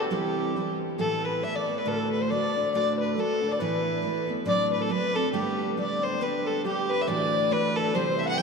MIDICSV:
0, 0, Header, 1, 4, 480
1, 0, Start_track
1, 0, Tempo, 434468
1, 123, Time_signature, 2, 2, 24, 8
1, 9304, End_track
2, 0, Start_track
2, 0, Title_t, "Fiddle"
2, 0, Program_c, 0, 110
2, 100, Note_on_c, 0, 67, 70
2, 819, Note_off_c, 0, 67, 0
2, 1098, Note_on_c, 0, 69, 87
2, 1378, Note_on_c, 0, 71, 74
2, 1394, Note_off_c, 0, 69, 0
2, 1584, Note_on_c, 0, 76, 93
2, 1600, Note_off_c, 0, 71, 0
2, 1721, Note_on_c, 0, 74, 83
2, 1738, Note_off_c, 0, 76, 0
2, 1966, Note_on_c, 0, 71, 76
2, 1982, Note_off_c, 0, 74, 0
2, 2073, Note_on_c, 0, 69, 92
2, 2090, Note_off_c, 0, 71, 0
2, 2331, Note_off_c, 0, 69, 0
2, 2347, Note_on_c, 0, 71, 71
2, 2448, Note_on_c, 0, 72, 77
2, 2465, Note_off_c, 0, 71, 0
2, 2545, Note_on_c, 0, 74, 94
2, 2561, Note_off_c, 0, 72, 0
2, 3019, Note_off_c, 0, 74, 0
2, 3033, Note_on_c, 0, 74, 88
2, 3274, Note_off_c, 0, 74, 0
2, 3319, Note_on_c, 0, 71, 74
2, 3535, Note_on_c, 0, 69, 85
2, 3551, Note_off_c, 0, 71, 0
2, 3882, Note_on_c, 0, 74, 63
2, 3899, Note_off_c, 0, 69, 0
2, 3996, Note_on_c, 0, 71, 75
2, 4013, Note_off_c, 0, 74, 0
2, 4735, Note_off_c, 0, 71, 0
2, 4954, Note_on_c, 0, 74, 95
2, 5195, Note_off_c, 0, 74, 0
2, 5226, Note_on_c, 0, 71, 69
2, 5319, Note_on_c, 0, 69, 78
2, 5336, Note_off_c, 0, 71, 0
2, 5427, Note_on_c, 0, 71, 100
2, 5443, Note_off_c, 0, 69, 0
2, 5694, Note_on_c, 0, 69, 94
2, 5710, Note_off_c, 0, 71, 0
2, 5880, Note_off_c, 0, 69, 0
2, 5886, Note_on_c, 0, 67, 77
2, 6336, Note_off_c, 0, 67, 0
2, 6402, Note_on_c, 0, 74, 83
2, 6666, Note_on_c, 0, 72, 84
2, 6682, Note_off_c, 0, 74, 0
2, 6875, Note_on_c, 0, 71, 76
2, 6891, Note_off_c, 0, 72, 0
2, 7144, Note_on_c, 0, 69, 71
2, 7161, Note_off_c, 0, 71, 0
2, 7343, Note_off_c, 0, 69, 0
2, 7354, Note_on_c, 0, 67, 88
2, 7620, Note_on_c, 0, 71, 98
2, 7637, Note_off_c, 0, 67, 0
2, 7751, Note_on_c, 0, 76, 73
2, 7767, Note_off_c, 0, 71, 0
2, 7817, Note_on_c, 0, 74, 99
2, 7833, Note_off_c, 0, 76, 0
2, 8308, Note_on_c, 0, 71, 103
2, 8325, Note_off_c, 0, 74, 0
2, 8570, Note_on_c, 0, 69, 96
2, 8587, Note_off_c, 0, 71, 0
2, 8785, Note_on_c, 0, 72, 92
2, 8801, Note_off_c, 0, 69, 0
2, 9050, Note_on_c, 0, 76, 92
2, 9066, Note_off_c, 0, 72, 0
2, 9147, Note_off_c, 0, 76, 0
2, 9156, Note_on_c, 0, 78, 94
2, 9255, Note_on_c, 0, 79, 125
2, 9271, Note_off_c, 0, 78, 0
2, 9304, Note_off_c, 0, 79, 0
2, 9304, End_track
3, 0, Start_track
3, 0, Title_t, "Flute"
3, 0, Program_c, 1, 73
3, 25, Note_on_c, 1, 67, 56
3, 127, Note_off_c, 1, 67, 0
3, 142, Note_on_c, 1, 67, 54
3, 840, Note_off_c, 1, 67, 0
3, 1091, Note_on_c, 1, 69, 63
3, 1372, Note_on_c, 1, 71, 73
3, 1388, Note_off_c, 1, 69, 0
3, 1589, Note_on_c, 1, 76, 83
3, 1605, Note_off_c, 1, 71, 0
3, 1720, Note_on_c, 1, 74, 79
3, 1736, Note_off_c, 1, 76, 0
3, 1965, Note_on_c, 1, 71, 71
3, 1982, Note_off_c, 1, 74, 0
3, 2064, Note_on_c, 1, 69, 68
3, 2080, Note_off_c, 1, 71, 0
3, 2436, Note_on_c, 1, 72, 77
3, 2452, Note_off_c, 1, 69, 0
3, 2536, Note_off_c, 1, 72, 0
3, 2547, Note_on_c, 1, 74, 76
3, 2987, Note_off_c, 1, 74, 0
3, 3006, Note_on_c, 1, 74, 73
3, 3287, Note_on_c, 1, 71, 66
3, 3304, Note_off_c, 1, 74, 0
3, 3414, Note_off_c, 1, 71, 0
3, 3414, Note_on_c, 1, 71, 46
3, 3475, Note_on_c, 1, 69, 72
3, 3492, Note_off_c, 1, 71, 0
3, 3847, Note_on_c, 1, 74, 73
3, 3863, Note_off_c, 1, 69, 0
3, 3967, Note_on_c, 1, 71, 60
3, 3983, Note_off_c, 1, 74, 0
3, 4640, Note_off_c, 1, 71, 0
3, 4930, Note_on_c, 1, 74, 78
3, 4996, Note_off_c, 1, 74, 0
3, 5194, Note_on_c, 1, 71, 74
3, 5274, Note_off_c, 1, 71, 0
3, 5274, Note_on_c, 1, 71, 47
3, 5312, Note_on_c, 1, 69, 69
3, 5329, Note_off_c, 1, 71, 0
3, 5417, Note_on_c, 1, 71, 85
3, 5434, Note_off_c, 1, 69, 0
3, 5681, Note_on_c, 1, 69, 73
3, 5697, Note_off_c, 1, 71, 0
3, 5876, Note_off_c, 1, 69, 0
3, 5882, Note_on_c, 1, 67, 52
3, 6334, Note_off_c, 1, 67, 0
3, 6375, Note_on_c, 1, 74, 69
3, 6849, Note_on_c, 1, 71, 61
3, 6865, Note_off_c, 1, 74, 0
3, 7129, Note_on_c, 1, 69, 71
3, 7146, Note_off_c, 1, 71, 0
3, 7326, Note_off_c, 1, 69, 0
3, 7333, Note_on_c, 1, 67, 69
3, 7582, Note_off_c, 1, 67, 0
3, 7610, Note_on_c, 1, 71, 86
3, 7821, Note_on_c, 1, 74, 75
3, 7838, Note_off_c, 1, 71, 0
3, 7952, Note_on_c, 1, 76, 40
3, 7968, Note_off_c, 1, 74, 0
3, 7968, Note_on_c, 1, 74, 73
3, 7985, Note_off_c, 1, 76, 0
3, 8108, Note_on_c, 1, 72, 53
3, 8125, Note_off_c, 1, 74, 0
3, 8155, Note_on_c, 1, 74, 82
3, 8171, Note_off_c, 1, 72, 0
3, 8316, Note_on_c, 1, 71, 77
3, 8333, Note_off_c, 1, 74, 0
3, 8573, Note_on_c, 1, 69, 81
3, 8589, Note_off_c, 1, 71, 0
3, 8773, Note_on_c, 1, 72, 72
3, 8789, Note_off_c, 1, 69, 0
3, 9021, Note_off_c, 1, 72, 0
3, 9028, Note_on_c, 1, 76, 82
3, 9123, Note_on_c, 1, 78, 82
3, 9140, Note_off_c, 1, 76, 0
3, 9218, Note_on_c, 1, 79, 80
3, 9235, Note_off_c, 1, 78, 0
3, 9304, Note_off_c, 1, 79, 0
3, 9304, End_track
4, 0, Start_track
4, 0, Title_t, "Steel-string acoustic guitar"
4, 0, Program_c, 2, 25
4, 0, Note_on_c, 2, 59, 53
4, 0, Note_on_c, 2, 62, 52
4, 0, Note_on_c, 2, 67, 58
4, 114, Note_off_c, 2, 59, 0
4, 115, Note_on_c, 2, 48, 66
4, 119, Note_on_c, 2, 55, 81
4, 122, Note_on_c, 2, 52, 80
4, 123, Note_off_c, 2, 62, 0
4, 125, Note_off_c, 2, 67, 0
4, 127, Note_on_c, 2, 60, 76
4, 129, Note_on_c, 2, 64, 78
4, 601, Note_off_c, 2, 48, 0
4, 603, Note_off_c, 2, 55, 0
4, 604, Note_off_c, 2, 52, 0
4, 607, Note_off_c, 2, 60, 0
4, 608, Note_off_c, 2, 64, 0
4, 621, Note_on_c, 2, 52, 53
4, 626, Note_on_c, 2, 55, 52
4, 636, Note_on_c, 2, 60, 58
4, 641, Note_on_c, 2, 64, 64
4, 1083, Note_off_c, 2, 52, 0
4, 1088, Note_on_c, 2, 45, 70
4, 1093, Note_off_c, 2, 64, 0
4, 1094, Note_off_c, 2, 55, 0
4, 1096, Note_on_c, 2, 52, 78
4, 1098, Note_on_c, 2, 59, 79
4, 1101, Note_off_c, 2, 60, 0
4, 1106, Note_on_c, 2, 57, 75
4, 1106, Note_on_c, 2, 64, 77
4, 1569, Note_off_c, 2, 45, 0
4, 1573, Note_off_c, 2, 52, 0
4, 1574, Note_off_c, 2, 59, 0
4, 1577, Note_off_c, 2, 64, 0
4, 1584, Note_on_c, 2, 52, 55
4, 1590, Note_off_c, 2, 57, 0
4, 1591, Note_on_c, 2, 59, 60
4, 1595, Note_on_c, 2, 57, 65
4, 1599, Note_on_c, 2, 64, 65
4, 1838, Note_off_c, 2, 64, 0
4, 1846, Note_off_c, 2, 52, 0
4, 1846, Note_off_c, 2, 57, 0
4, 1849, Note_off_c, 2, 59, 0
4, 1852, Note_on_c, 2, 64, 45
4, 1859, Note_on_c, 2, 57, 36
4, 1866, Note_on_c, 2, 59, 36
4, 2043, Note_off_c, 2, 57, 0
4, 2047, Note_on_c, 2, 38, 70
4, 2047, Note_on_c, 2, 45, 75
4, 2052, Note_off_c, 2, 59, 0
4, 2054, Note_on_c, 2, 50, 76
4, 2056, Note_off_c, 2, 64, 0
4, 2056, Note_on_c, 2, 57, 83
4, 2064, Note_on_c, 2, 62, 69
4, 2066, Note_on_c, 2, 66, 72
4, 2528, Note_off_c, 2, 50, 0
4, 2529, Note_off_c, 2, 38, 0
4, 2529, Note_off_c, 2, 45, 0
4, 2538, Note_off_c, 2, 62, 0
4, 2539, Note_off_c, 2, 66, 0
4, 2541, Note_on_c, 2, 50, 57
4, 2549, Note_off_c, 2, 57, 0
4, 2553, Note_on_c, 2, 57, 55
4, 2566, Note_on_c, 2, 62, 67
4, 2566, Note_on_c, 2, 66, 67
4, 2799, Note_off_c, 2, 66, 0
4, 2806, Note_off_c, 2, 50, 0
4, 2812, Note_off_c, 2, 57, 0
4, 2812, Note_on_c, 2, 66, 44
4, 2818, Note_off_c, 2, 62, 0
4, 2830, Note_on_c, 2, 62, 44
4, 2833, Note_on_c, 2, 50, 36
4, 2833, Note_on_c, 2, 57, 31
4, 3017, Note_off_c, 2, 66, 0
4, 3026, Note_off_c, 2, 62, 0
4, 3028, Note_off_c, 2, 50, 0
4, 3028, Note_off_c, 2, 57, 0
4, 3029, Note_on_c, 2, 38, 75
4, 3035, Note_on_c, 2, 45, 66
4, 3040, Note_on_c, 2, 50, 84
4, 3040, Note_on_c, 2, 57, 87
4, 3041, Note_on_c, 2, 62, 78
4, 3043, Note_on_c, 2, 66, 85
4, 3490, Note_off_c, 2, 50, 0
4, 3501, Note_off_c, 2, 38, 0
4, 3504, Note_off_c, 2, 45, 0
4, 3504, Note_on_c, 2, 50, 55
4, 3507, Note_off_c, 2, 62, 0
4, 3508, Note_off_c, 2, 66, 0
4, 3514, Note_off_c, 2, 57, 0
4, 3518, Note_on_c, 2, 57, 58
4, 3524, Note_on_c, 2, 62, 53
4, 3524, Note_on_c, 2, 66, 67
4, 3755, Note_off_c, 2, 66, 0
4, 3758, Note_off_c, 2, 62, 0
4, 3768, Note_off_c, 2, 50, 0
4, 3768, Note_on_c, 2, 66, 46
4, 3772, Note_on_c, 2, 62, 37
4, 3775, Note_off_c, 2, 57, 0
4, 3787, Note_on_c, 2, 57, 35
4, 3795, Note_on_c, 2, 50, 32
4, 3976, Note_off_c, 2, 66, 0
4, 3977, Note_off_c, 2, 57, 0
4, 3978, Note_off_c, 2, 62, 0
4, 3978, Note_on_c, 2, 45, 85
4, 3981, Note_off_c, 2, 50, 0
4, 3981, Note_on_c, 2, 59, 80
4, 3985, Note_on_c, 2, 52, 78
4, 3990, Note_on_c, 2, 57, 92
4, 3991, Note_on_c, 2, 64, 81
4, 4428, Note_off_c, 2, 52, 0
4, 4431, Note_off_c, 2, 59, 0
4, 4441, Note_on_c, 2, 52, 56
4, 4445, Note_on_c, 2, 59, 57
4, 4451, Note_off_c, 2, 57, 0
4, 4454, Note_off_c, 2, 64, 0
4, 4456, Note_off_c, 2, 45, 0
4, 4456, Note_on_c, 2, 57, 60
4, 4468, Note_on_c, 2, 64, 61
4, 4706, Note_off_c, 2, 64, 0
4, 4714, Note_off_c, 2, 57, 0
4, 4717, Note_off_c, 2, 52, 0
4, 4719, Note_off_c, 2, 59, 0
4, 4719, Note_on_c, 2, 64, 53
4, 4727, Note_on_c, 2, 57, 39
4, 4740, Note_on_c, 2, 59, 47
4, 4917, Note_off_c, 2, 57, 0
4, 4917, Note_on_c, 2, 38, 67
4, 4921, Note_off_c, 2, 59, 0
4, 4923, Note_on_c, 2, 45, 84
4, 4924, Note_on_c, 2, 54, 75
4, 4926, Note_on_c, 2, 60, 77
4, 4930, Note_on_c, 2, 57, 84
4, 4932, Note_off_c, 2, 64, 0
4, 4939, Note_on_c, 2, 62, 94
4, 5392, Note_off_c, 2, 54, 0
4, 5397, Note_off_c, 2, 60, 0
4, 5399, Note_off_c, 2, 57, 0
4, 5405, Note_on_c, 2, 54, 57
4, 5406, Note_off_c, 2, 38, 0
4, 5409, Note_off_c, 2, 45, 0
4, 5411, Note_on_c, 2, 60, 59
4, 5413, Note_on_c, 2, 57, 67
4, 5422, Note_off_c, 2, 62, 0
4, 5426, Note_on_c, 2, 62, 64
4, 5663, Note_off_c, 2, 62, 0
4, 5670, Note_off_c, 2, 57, 0
4, 5677, Note_off_c, 2, 60, 0
4, 5677, Note_on_c, 2, 62, 41
4, 5679, Note_off_c, 2, 54, 0
4, 5683, Note_on_c, 2, 57, 38
4, 5690, Note_on_c, 2, 60, 40
4, 5693, Note_on_c, 2, 54, 34
4, 5888, Note_off_c, 2, 57, 0
4, 5889, Note_on_c, 2, 50, 67
4, 5891, Note_off_c, 2, 62, 0
4, 5892, Note_off_c, 2, 60, 0
4, 5893, Note_off_c, 2, 54, 0
4, 5894, Note_on_c, 2, 43, 65
4, 5896, Note_on_c, 2, 59, 79
4, 5898, Note_on_c, 2, 55, 86
4, 5901, Note_on_c, 2, 57, 83
4, 5903, Note_on_c, 2, 62, 92
4, 6364, Note_off_c, 2, 55, 0
4, 6369, Note_off_c, 2, 59, 0
4, 6374, Note_off_c, 2, 43, 0
4, 6375, Note_off_c, 2, 57, 0
4, 6377, Note_on_c, 2, 55, 57
4, 6382, Note_on_c, 2, 59, 54
4, 6387, Note_off_c, 2, 62, 0
4, 6388, Note_on_c, 2, 57, 59
4, 6391, Note_on_c, 2, 62, 59
4, 6844, Note_off_c, 2, 55, 0
4, 6848, Note_off_c, 2, 59, 0
4, 6855, Note_off_c, 2, 62, 0
4, 6857, Note_on_c, 2, 55, 64
4, 6860, Note_off_c, 2, 57, 0
4, 6861, Note_on_c, 2, 59, 85
4, 6868, Note_on_c, 2, 62, 73
4, 6874, Note_on_c, 2, 67, 92
4, 7329, Note_off_c, 2, 55, 0
4, 7336, Note_off_c, 2, 59, 0
4, 7339, Note_off_c, 2, 62, 0
4, 7342, Note_off_c, 2, 67, 0
4, 7343, Note_on_c, 2, 55, 55
4, 7351, Note_on_c, 2, 59, 62
4, 7359, Note_on_c, 2, 62, 51
4, 7361, Note_on_c, 2, 67, 70
4, 7812, Note_on_c, 2, 38, 77
4, 7815, Note_off_c, 2, 50, 0
4, 7816, Note_off_c, 2, 55, 0
4, 7817, Note_off_c, 2, 62, 0
4, 7820, Note_off_c, 2, 59, 0
4, 7820, Note_on_c, 2, 45, 86
4, 7821, Note_on_c, 2, 52, 83
4, 7825, Note_off_c, 2, 67, 0
4, 7826, Note_on_c, 2, 57, 71
4, 7831, Note_on_c, 2, 62, 77
4, 7836, Note_on_c, 2, 66, 78
4, 8271, Note_off_c, 2, 52, 0
4, 8283, Note_off_c, 2, 57, 0
4, 8284, Note_on_c, 2, 52, 65
4, 8289, Note_off_c, 2, 38, 0
4, 8291, Note_off_c, 2, 62, 0
4, 8293, Note_off_c, 2, 45, 0
4, 8297, Note_on_c, 2, 57, 65
4, 8301, Note_off_c, 2, 66, 0
4, 8304, Note_on_c, 2, 62, 67
4, 8313, Note_on_c, 2, 66, 67
4, 8764, Note_off_c, 2, 52, 0
4, 8770, Note_off_c, 2, 57, 0
4, 8774, Note_off_c, 2, 62, 0
4, 8778, Note_on_c, 2, 52, 76
4, 8779, Note_off_c, 2, 66, 0
4, 8781, Note_on_c, 2, 55, 91
4, 8784, Note_on_c, 2, 48, 72
4, 8792, Note_on_c, 2, 67, 78
4, 8795, Note_on_c, 2, 60, 86
4, 9239, Note_off_c, 2, 52, 0
4, 9242, Note_off_c, 2, 55, 0
4, 9252, Note_off_c, 2, 60, 0
4, 9252, Note_on_c, 2, 52, 63
4, 9253, Note_off_c, 2, 48, 0
4, 9255, Note_on_c, 2, 55, 59
4, 9257, Note_off_c, 2, 67, 0
4, 9265, Note_on_c, 2, 60, 59
4, 9304, Note_off_c, 2, 52, 0
4, 9304, Note_off_c, 2, 55, 0
4, 9304, Note_off_c, 2, 60, 0
4, 9304, End_track
0, 0, End_of_file